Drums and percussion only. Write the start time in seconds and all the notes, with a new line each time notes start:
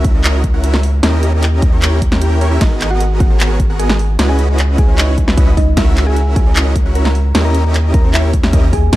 0.04 kick, closed hi-hat
0.24 clap, closed hi-hat
0.44 kick, closed hi-hat
0.64 closed hi-hat
0.74 snare
0.83 open hi-hat
1.03 snare, closed hi-hat
1.23 closed hi-hat
1.43 clap, closed hi-hat
1.62 kick, closed hi-hat
1.82 clap, closed hi-hat
2.02 kick, closed hi-hat
2.12 snare
2.22 closed hi-hat
2.41 open hi-hat
2.61 kick, snare, closed hi-hat, ride
2.81 clap, closed hi-hat
3.01 closed hi-hat
3.20 kick, closed hi-hat
3.40 clap, closed hi-hat
3.60 kick, closed hi-hat
3.80 closed hi-hat
3.90 snare
3.99 open hi-hat
4.19 snare, closed hi-hat, ride
4.39 closed hi-hat
4.58 clap, closed hi-hat
4.78 kick, closed hi-hat
4.98 clap, closed hi-hat
5.18 kick, closed hi-hat
5.28 snare
5.37 kick, closed hi-hat
5.57 kick, open hi-hat
5.77 kick, snare, closed hi-hat, ride
5.97 clap, closed hi-hat
6.16 closed hi-hat
6.36 kick, closed hi-hat
6.56 clap, closed hi-hat
6.76 kick, closed hi-hat
6.95 closed hi-hat
7.05 snare
7.15 open hi-hat
7.35 snare, closed hi-hat, ride
7.55 closed hi-hat
7.74 clap, closed hi-hat
7.94 kick, closed hi-hat
8.14 clap, closed hi-hat
8.33 kick, closed hi-hat
8.43 snare
8.53 kick, closed hi-hat
8.73 kick, open hi-hat
8.93 kick, snare, closed hi-hat, ride